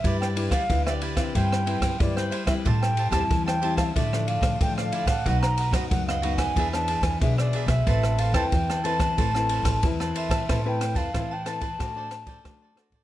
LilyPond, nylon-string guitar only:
\new Staff \with { instrumentName = "Nylon-string guitar" } { \time 4/4 \key a \minor \tempo 4 = 92 << { <d' e' b'>8 <d' e' b'>16 r16 <d' e' b'>8 r16 <c' e' b'>8. <c' e' b'>8 <c' e' b'>8 r16 <g c' e'>16~ | <g c' e'>8 r16 <g c' e'>8. <g c' e'>8 <f a d'>16 <f a d'>8. <f a d'>8. r16 | <fis b dis'>8. <fis b dis'>8. <fis b dis'>8 <b d' gis'>16 <b d'>8. <b d' gis'>8. r16 | <c' e' b'>8. <c' e' b'>8. <c' e' b'>8. <c' e' b'>8. <c' e' b'>4 |
<c' e' b'>16 <c' e' b'>8. <c' e' b'>16 r16 <c' e' b'>16 r16 <d' fis' c''>16 <d' fis' c''>8. <d' fis' c''>8 <d' fis' c''>8 | } \\ { g4 d4 g4 g4 | a,4 e4 d4 d4 | b,4 fis,4 e4 b,4 | a4 e4 a4 e4 |
a4 e4 a4 a4 | } >> }